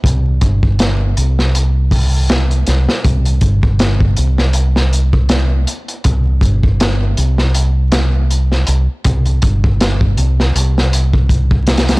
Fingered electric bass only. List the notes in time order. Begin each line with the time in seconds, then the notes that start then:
0.04 C2
0.42 G1
1.18 C2
2.68 C2
3.05 C2
3.42 G1
4.18 C2
6.06 C2
6.42 G1
7.18 C2
8.68 C2
9.06 C2
9.43 G1
10.18 C2
10.55 C2